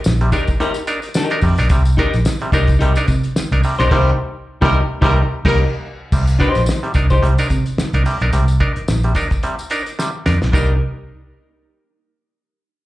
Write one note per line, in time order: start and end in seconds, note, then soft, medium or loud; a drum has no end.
0.04 0.30 A#1 loud
0.04 0.11 D#4 soft
0.04 0.12 A#4 soft
0.04 snare loud
0.04 tambourine medium
0.21 0.30 C3 medium
0.21 0.30 G3 medium
0.21 closed hi-hat medium
0.32 0.44 D4 medium
0.32 0.48 D#4 medium
0.32 0.44 D#4 medium
0.32 0.48 G4 medium
0.32 0.44 A#4 medium
0.32 0.49 A#4 medium
0.32 kick medium
0.32 closed hi-hat medium
0.32 tambourine medium
0.47 kick medium
0.47 closed hi-hat soft
0.47 tambourine soft
0.60 0.72 C3 medium
0.60 0.72 G3 medium
0.60 0.76 D#4 medium
0.60 0.76 G4 medium
0.60 0.76 A#4 loud
0.60 closed hi-hat medium
0.74 closed hi-hat soft
0.74 tambourine medium
0.87 0.99 D4 medium
0.87 1.00 D#4 medium
0.87 0.99 A#4 medium
0.87 closed hi-hat medium
0.87 tambourine medium
1.02 1.08 D#4 soft
1.02 1.08 A#4 soft
1.02 closed hi-hat soft
1.02 tambourine soft
1.14 1.36 D#4 medium
1.14 1.37 G4 medium
1.14 1.37 A#4 loud
1.14 snare loud
1.14 tambourine loud
1.30 1.40 D4 medium
1.30 1.40 D#4 medium
1.30 1.40 A#4 medium
1.30 closed hi-hat medium
1.41 1.56 F2 medium
1.41 1.55 C3 medium
1.41 1.55 G3 medium
1.41 kick medium
1.41 open hi-hat medium
1.41 tambourine medium
1.58 1.69 B1 medium
1.58 1.68 D4 medium
1.58 1.68 D#4 medium
1.58 1.68 A#4 medium
1.58 snare soft
1.58 closed hi-hat soft
1.58 tambourine soft
1.69 1.95 C2 loud
1.69 1.83 C3 medium
1.69 1.83 G3 medium
1.69 kick loud
1.69 closed hi-hat loud
1.69 tambourine medium
1.85 closed hi-hat soft
1.85 tambourine medium
1.97 2.10 D4 medium
1.97 2.13 D#4 loud
1.97 2.10 D#4 medium
1.97 2.14 G4 loud
1.97 2.10 A#4 medium
1.97 2.14 A#4 loud
1.97 kick medium
1.97 closed hi-hat medium
2.13 2.25 A#1 medium
2.13 2.19 D#4 soft
2.13 2.19 A#4 soft
2.13 closed hi-hat medium
2.13 tambourine soft
2.25 2.32 D#4 soft
2.25 2.32 A#4 soft
2.25 snare loud
2.25 tambourine medium
2.41 2.51 C3 medium
2.41 2.51 G3 medium
2.41 closed hi-hat soft
2.52 2.77 C2 medium
2.52 2.65 D4 medium
2.52 2.69 D#4 medium
2.52 2.65 D#4 medium
2.52 2.69 G4 medium
2.52 2.65 A#4 medium
2.52 2.69 A#4 medium
2.52 kick medium
2.52 closed hi-hat medium
2.52 tambourine medium
2.67 kick medium
2.67 closed hi-hat soft
2.67 tambourine soft
2.79 2.94 C2 loud
2.79 2.93 C3 medium
2.79 2.93 G3 medium
2.79 2.96 D#4 medium
2.79 2.96 G4 medium
2.79 2.96 A#4 medium
2.79 closed hi-hat medium
2.95 3.06 D4 medium
2.95 3.06 D#4 medium
2.95 3.06 A#4 medium
2.95 closed hi-hat medium
2.95 tambourine medium
3.08 3.22 C3 loud
3.08 3.15 D#4 soft
3.08 3.15 A#4 medium
3.08 kick medium
3.08 closed hi-hat medium
3.08 tambourine medium
3.23 closed hi-hat medium
3.23 tambourine soft
3.36 muted fingered electric bass stroke soft
3.36 snare loud
3.36 tambourine loud
3.51 3.62 C2 medium
3.51 3.61 D4 medium
3.51 3.61 D#4 medium
3.51 3.61 A#4 medium
3.51 closed hi-hat medium
3.63 3.76 C3 medium
3.63 3.76 G3 medium
3.63 open hi-hat medium
3.63 tambourine soft
3.79 3.90 B1 medium
3.79 3.89 D4 medium
3.79 3.89 D#4 medium
3.79 3.90 D#4 medium
3.79 3.90 G4 medium
3.79 3.89 A#4 medium
3.79 3.88 C5 medium
3.79 snare soft
3.79 closed hi-hat soft
3.79 tambourine soft
3.89 4.11 C2 loud
3.89 4.11 C3 loud
3.89 4.05 G3 loud
3.89 4.11 G3 loud
3.89 4.05 A#3 medium
3.89 4.05 D#4 medium
3.89 4.11 D#4 loud
3.89 4.11 G4 medium
3.89 4.05 A#4 loud
3.89 4.10 C5 medium
3.89 kick loud
3.89 snare loud
3.89 crash medium
4.61 4.80 C2 loud
4.61 4.80 C3 loud
4.61 4.76 G3 loud
4.61 4.80 G3 loud
4.61 4.76 A#3 loud
4.61 4.80 D#4 loud
4.61 4.76 D#4 loud
4.61 4.80 G4 loud
4.61 4.76 A#4 loud
4.61 4.81 A#4 loud
4.61 kick loud
4.61 snare loud
5.01 5.21 C2 loud
5.01 5.21 C3 loud
5.01 5.21 G3 loud
5.01 5.18 G3 loud
5.01 5.18 A#3 medium
5.01 5.21 D#4 medium
5.01 5.17 D#4 loud
5.01 5.21 G4 medium
5.01 5.22 A#4 loud
5.01 5.18 A#4 loud
5.01 kick loud
5.01 snare loud
5.45 5.63 C2 loud
5.45 5.59 G3 loud
5.45 5.59 A#3 loud
5.45 5.63 D#4 medium
5.45 5.63 D#4 loud
5.45 5.59 D#4 loud
5.45 5.63 G4 loud
5.45 5.64 A#4 loud
5.45 5.59 A#4 loud
5.45 5.64 A#4 loud
5.45 kick loud
5.45 snare loud
5.45 crash medium
6.12 6.37 C2 loud
6.12 6.24 C3 medium
6.12 6.24 G3 medium
6.12 kick loud
6.12 crash loud
6.12 tambourine medium
6.27 closed hi-hat soft
6.27 tambourine medium
6.39 6.51 D4 medium
6.39 6.60 D#4 medium
6.39 6.52 D#4 medium
6.39 6.61 G4 loud
6.39 6.52 A#4 medium
6.39 6.61 C5 loud
6.39 kick loud
6.39 closed hi-hat medium
6.55 6.66 A#1 medium
6.55 6.61 D#4 soft
6.55 6.61 A#4 soft
6.55 closed hi-hat medium
6.55 tambourine soft
6.66 6.74 D#4 soft
6.66 6.74 A#4 soft
6.66 snare loud
6.66 tambourine medium
6.83 6.92 C3 medium
6.83 6.92 G3 medium
6.83 closed hi-hat medium
6.94 7.19 C2 medium
6.94 7.07 D4 medium
6.94 7.07 D#4 medium
6.94 7.07 A#4 medium
6.94 kick medium
6.94 closed hi-hat medium
6.94 tambourine medium
7.10 7.24 D#4 medium
7.10 7.23 G4 medium
7.10 7.23 C5 medium
7.10 kick medium
7.10 closed hi-hat soft
7.10 tambourine soft
7.23 7.37 C2 loud
7.23 7.34 C3 medium
7.23 7.34 G3 medium
7.23 closed hi-hat medium
7.38 7.48 D4 medium
7.38 7.48 D#4 medium
7.38 7.48 A#4 medium
7.38 closed hi-hat soft
7.38 tambourine medium
7.50 7.64 C3 medium
7.50 7.57 D#4 soft
7.50 7.57 A#4 soft
7.50 kick medium
7.50 closed hi-hat medium
7.50 tambourine medium
7.66 closed hi-hat medium
7.66 tambourine soft
7.78 muted fingered electric bass stroke soft
7.78 snare loud
7.78 tambourine loud
7.93 8.04 C2 medium
7.93 8.03 D4 medium
7.93 8.03 D#4 medium
7.93 8.03 A#4 medium
7.93 closed hi-hat medium
8.05 8.17 C3 medium
8.05 8.17 G3 medium
8.05 open hi-hat medium
8.05 tambourine soft
8.21 8.32 B1 medium
8.21 8.30 D4 medium
8.21 8.31 D#4 medium
8.21 8.31 A#4 medium
8.21 closed hi-hat soft
8.33 8.57 C2 loud
8.33 8.45 C3 medium
8.33 8.45 G3 medium
8.33 closed hi-hat medium
8.33 tambourine medium
8.48 closed hi-hat soft
8.48 tambourine medium
8.60 8.72 D4 medium
8.60 8.72 D#4 medium
8.60 8.72 A#4 loud
8.60 kick medium
8.60 closed hi-hat medium
8.76 8.81 D#4 soft
8.76 8.81 A#4 soft
8.76 muted fingered electric bass stroke soft
8.76 closed hi-hat medium
8.88 9.13 A#1 loud
8.88 8.95 D#4 soft
8.88 8.95 A#4 soft
8.88 snare loud
8.88 tambourine medium
9.03 9.13 C3 medium
9.03 9.13 G3 medium
9.03 closed hi-hat soft
9.15 9.27 D4 medium
9.15 9.28 D#4 medium
9.15 9.28 A#4 medium
9.15 kick medium
9.15 closed hi-hat medium
9.15 tambourine medium
9.30 kick medium
9.30 closed hi-hat soft
9.30 tambourine soft
9.43 9.55 C3 medium
9.43 9.55 G3 medium
9.43 closed hi-hat medium
9.59 closed hi-hat soft
9.59 tambourine medium
9.70 9.82 D4 medium
9.70 9.83 D#4 medium
9.70 9.83 A#4 medium
9.70 closed hi-hat medium
9.70 tambourine medium
9.86 9.91 D#4 soft
9.86 9.91 A#4 soft
9.86 closed hi-hat medium
9.86 tambourine soft
9.99 10.10 C3 medium
9.99 10.10 G3 medium
9.99 snare medium
9.99 tambourine medium
10.26 10.40 F2 medium
10.26 10.38 D4 medium
10.26 10.38 D#4 medium
10.26 10.38 A#4 medium
10.26 snare loud
10.26 tambourine soft
10.41 10.53 B1 medium
10.41 10.46 D#4 soft
10.41 10.46 A#4 soft
10.41 snare medium
10.41 tambourine soft
10.52 10.79 C2 medium
10.52 10.72 G3 medium
10.52 10.72 A#3 medium
10.52 10.75 D4 medium
10.52 10.72 D#4 medium
10.52 10.71 D#4 medium
10.52 10.75 D#4 medium
10.52 10.72 G4 medium
10.52 10.72 A#4 medium
10.52 10.75 A#4 medium
10.52 10.72 A#4 medium
10.52 kick loud
10.52 crash medium
10.52 tambourine medium